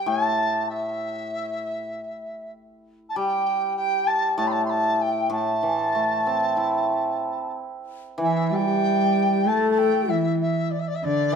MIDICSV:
0, 0, Header, 1, 5, 480
1, 0, Start_track
1, 0, Tempo, 616016
1, 552, Time_signature, 4, 2, 24, 8
1, 4384, Tempo, 643087
1, 6784, Tempo, 625652
1, 8712, End_track
2, 0, Start_track
2, 0, Title_t, "Dizi"
2, 0, Program_c, 0, 73
2, 58, Note_on_c, 0, 81, 86
2, 534, Note_off_c, 0, 81, 0
2, 538, Note_on_c, 0, 76, 74
2, 1954, Note_off_c, 0, 76, 0
2, 2407, Note_on_c, 0, 81, 69
2, 2456, Note_on_c, 0, 79, 85
2, 2468, Note_off_c, 0, 81, 0
2, 2923, Note_off_c, 0, 79, 0
2, 2928, Note_on_c, 0, 79, 96
2, 3170, Note_on_c, 0, 81, 93
2, 3181, Note_off_c, 0, 79, 0
2, 3398, Note_off_c, 0, 81, 0
2, 3402, Note_on_c, 0, 81, 88
2, 3481, Note_on_c, 0, 84, 68
2, 3493, Note_off_c, 0, 81, 0
2, 3515, Note_on_c, 0, 81, 81
2, 3527, Note_off_c, 0, 84, 0
2, 3615, Note_off_c, 0, 81, 0
2, 3619, Note_on_c, 0, 84, 59
2, 3662, Note_on_c, 0, 81, 85
2, 3674, Note_off_c, 0, 84, 0
2, 3905, Note_on_c, 0, 79, 85
2, 3916, Note_off_c, 0, 81, 0
2, 4136, Note_off_c, 0, 79, 0
2, 4141, Note_on_c, 0, 81, 80
2, 5790, Note_off_c, 0, 81, 0
2, 6328, Note_on_c, 0, 76, 75
2, 6559, Note_on_c, 0, 79, 89
2, 6570, Note_off_c, 0, 76, 0
2, 7270, Note_on_c, 0, 81, 82
2, 7282, Note_off_c, 0, 79, 0
2, 7442, Note_off_c, 0, 81, 0
2, 7446, Note_on_c, 0, 81, 57
2, 7503, Note_on_c, 0, 79, 83
2, 7514, Note_off_c, 0, 81, 0
2, 7742, Note_on_c, 0, 76, 79
2, 7753, Note_off_c, 0, 79, 0
2, 7976, Note_off_c, 0, 76, 0
2, 7981, Note_on_c, 0, 76, 75
2, 8213, Note_on_c, 0, 74, 64
2, 8224, Note_off_c, 0, 76, 0
2, 8280, Note_on_c, 0, 76, 70
2, 8291, Note_off_c, 0, 74, 0
2, 8341, Note_on_c, 0, 74, 70
2, 8353, Note_off_c, 0, 76, 0
2, 8396, Note_on_c, 0, 76, 70
2, 8408, Note_off_c, 0, 74, 0
2, 8466, Note_on_c, 0, 74, 87
2, 8478, Note_off_c, 0, 76, 0
2, 8708, Note_off_c, 0, 74, 0
2, 8712, End_track
3, 0, Start_track
3, 0, Title_t, "Xiao"
3, 0, Program_c, 1, 77
3, 6303, Note_on_c, 1, 64, 64
3, 6549, Note_on_c, 1, 67, 64
3, 6561, Note_off_c, 1, 64, 0
3, 6603, Note_on_c, 1, 64, 55
3, 6614, Note_off_c, 1, 67, 0
3, 6658, Note_on_c, 1, 67, 74
3, 6669, Note_off_c, 1, 64, 0
3, 7261, Note_on_c, 1, 69, 93
3, 7272, Note_off_c, 1, 67, 0
3, 7748, Note_on_c, 1, 64, 67
3, 7760, Note_off_c, 1, 69, 0
3, 8229, Note_off_c, 1, 64, 0
3, 8480, Note_on_c, 1, 62, 54
3, 8691, Note_off_c, 1, 62, 0
3, 8712, End_track
4, 0, Start_track
4, 0, Title_t, "Cello"
4, 0, Program_c, 2, 42
4, 6308, Note_on_c, 2, 52, 65
4, 6530, Note_on_c, 2, 55, 73
4, 6541, Note_off_c, 2, 52, 0
4, 7262, Note_on_c, 2, 57, 77
4, 7273, Note_off_c, 2, 55, 0
4, 7748, Note_on_c, 2, 52, 62
4, 7759, Note_off_c, 2, 57, 0
4, 8229, Note_off_c, 2, 52, 0
4, 8471, Note_on_c, 2, 50, 75
4, 8712, Note_off_c, 2, 50, 0
4, 8712, End_track
5, 0, Start_track
5, 0, Title_t, "Hammered dulcimer"
5, 0, Program_c, 3, 15
5, 49, Note_on_c, 3, 45, 58
5, 1512, Note_off_c, 3, 45, 0
5, 2464, Note_on_c, 3, 55, 60
5, 3410, Note_on_c, 3, 45, 65
5, 3898, Note_off_c, 3, 55, 0
5, 4118, Note_off_c, 3, 45, 0
5, 4127, Note_on_c, 3, 45, 60
5, 4385, Note_on_c, 3, 52, 42
5, 4624, Note_on_c, 3, 57, 42
5, 4861, Note_on_c, 3, 60, 43
5, 5087, Note_on_c, 3, 64, 40
5, 5330, Note_off_c, 3, 52, 0
5, 5567, Note_off_c, 3, 45, 0
5, 5576, Note_off_c, 3, 57, 0
5, 5823, Note_off_c, 3, 60, 0
5, 6064, Note_off_c, 3, 64, 0
5, 6288, Note_on_c, 3, 52, 57
5, 7738, Note_off_c, 3, 52, 0
5, 8686, Note_on_c, 3, 52, 59
5, 8712, Note_off_c, 3, 52, 0
5, 8712, End_track
0, 0, End_of_file